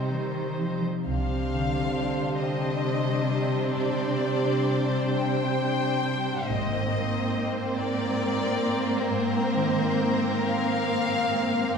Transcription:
Already playing: C3 G3 C4 D#4 C5 F5 G5
0.14 D#3
0.60 F3 G4
1.07 C2 C3 G3 C4 D4 C5 F5
1.54 D3
1.98 C5
2.42 D#5 G5
2.87 D6
3.31 G4
3.76 C3 D5
4.22 D4
4.68 C5
5.15 G5
5.60 D5
6.04 G4
6.48 G#1 G#2 A#3 C4 D#5
6.92 A#3
7.36 C5
7.58 C5
7.78 A#4 D5 A#5
8.23 A#4
8.66 A#3
9.09 G#2 C5
9.55 D#3
10.01 C5
10.47 F5 A#5
10.91 A#4
11.34 A#3

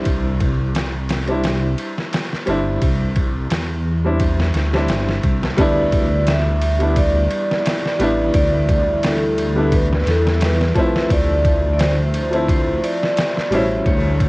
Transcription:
Already playing: G3 C4 D4 E4
0.05 C2, kick, ride
0.40 kick, ride
0.75 snare, ride
1.09 snare, ride
1.28 G3 C4 D4 E4, ride
1.44 snare, ride
1.78 ride
1.98 snare
2.13 snare, ride
2.33 snare
2.46 G1 G3 C4 D4 E4, ride
2.82 C2, kick, ride
3.16 kick, ride
3.50 E2, snare, ride
4.04 G3 C4 D4 E4
4.20 kick, ride
4.40 snare
4.54 D2, snare, ride
4.73 G3 C4 D4, snare
4.77 E4
4.88 G1, snare, ride
5.09 snare
5.23 C2, kick, ride
5.43 snare
5.57 D2 G3 B3 D4 E4 D5 E5, kick, ride
5.61 E4
5.92 kick, ride
6.27 E5, snare, ride
6.61 ride
6.79 G3 B3 D4, ride
6.83 E4
6.96 D5, kick, ride
7.31 ride
7.51 snare
7.66 snare, ride
7.86 snare
7.99 A1 G3 B3 D4, ride
8.03 E4
8.34 D2 D5, kick, ride
8.69 kick, ride
9.03 D2 A4, snare, ride
9.38 ride
9.55 G3 B3 D4 E4
9.72 B4, kick, ride
9.93 snare
10.06 E2 A4, snare, ride
10.27 snare
10.41 B4, snare, ride
10.61 snare
10.75 F3 A3 C4, kick, ride
10.79 E4
10.96 snare
11.10 D2 F3 C5 D5, kick, ride
11.45 kick, ride
11.73 D5
11.79 C5, snare, ride
12.14 ride
12.31 F3 A3 C4, ride
12.35 E4
12.48 C5, kick, ride
12.83 D5, ride
13.03 snare
13.17 snare, ride
13.37 snare
13.51 A1 B2 G3 C#4 C5, ride
13.55 E4
13.86 D2 B3 G4 C#5, kick, ride
14.20 kick, ride

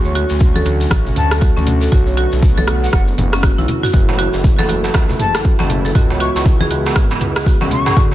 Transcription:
Already playing: D2 D3 F#3 A3 C#4 F#4
0.05 C#5, shekere
0.15 F#4, open hi-hat
0.29 D2, shekere
0.39 kick, low conga, shekere
0.55 A4, high conga, shekere
0.66 D2 F#4, open hi-hat, high conga
0.81 shekere
0.90 A1, kick, cross-stick, high conga, shekere
1.06 low conga, shekere
1.16 D2 A5, mid tom, open hi-hat
1.31 A4, cross-stick, shekere
1.41 F#4, kick, shekere
1.57 D2 C#4, high conga, shekere
1.67 open hi-hat, low conga
1.81 A4, shekere
1.92 B1 F#3 B3 F#4, kick, mid tom, shekere
2.07 C#5, shekere
2.17 F#4, open hi-hat
2.32 B1, shekere
2.42 kick, low conga, shekere
2.58 A4, high conga, shekere
2.67 B1 F#4, cross-stick, open hi-hat, high conga
2.83 F#5, shekere
2.92 F#1 F#5, kick, cross-stick, shekere
3.07 shekere
3.18 F#1, mid tom, open hi-hat, high conga, low conga
3.33 C#4, cross-stick, shekere
3.43 F#4, kick, cross-stick, shekere
3.58 B1 E4, high conga, shekere
3.68 open hi-hat, low conga
3.83 F#4, mid tom, shekere
3.93 F#1 C#3 E3 A3 E4 F#4, kick, mid tom, darbuka dum, shekere
4.08 C#5, darbuka tek, shekere
4.19 F#4, open hi-hat
4.34 F#1, darbuka tek, shekere
4.44 kick, low conga, shekere
4.59 A4, high conga, darbuka tek, shekere
4.69 F#1 F#4, open hi-hat, high conga
4.84 darbuka tek, shekere
4.94 C#2, kick, cross-stick, darbuka ka, high conga, shekere
5.09 darbuka tek, low conga, shekere
5.19 F#1 A5, mid tom, open hi-hat
5.35 A4, cross-stick, darbuka tek, shekere
5.44 F#4, kick, shekere
5.59 F#1 C#4, darbuka tek, high conga, shekere
5.69 open hi-hat, low conga
5.85 A4, darbuka tek, shekere
5.95 C#2 G#3 B3 F#4, kick, mid tom, darbuka dum, shekere
6.10 C#5, darbuka tek, shekere
6.20 F#4 C#6, open hi-hat
6.35 C#2 C#6, darbuka tek, shekere
6.45 kick, low conga, shekere
6.60 G#4, high conga, darbuka tek, shekere
6.71 C#2 F#4, open hi-hat, high conga
6.86 darbuka tek, shekere
6.96 G#1, kick, cross-stick, shekere
7.11 darbuka ka, darbuka tek, shekere
7.21 C#2, mid tom, open hi-hat
7.36 G#4, cross-stick, darbuka tek, shekere
7.46 F#4, kick, shekere
7.61 C#2 C#4, darbuka tek, high conga, shekere
7.71 C#6, open hi-hat, low conga
7.86 G#4, mid tom, darbuka ka, darbuka tek, shekere
7.96 D2 D3 F#3 A3 C#4 F#4, kick, mid tom, darbuka dum, shekere
8.11 darbuka tek

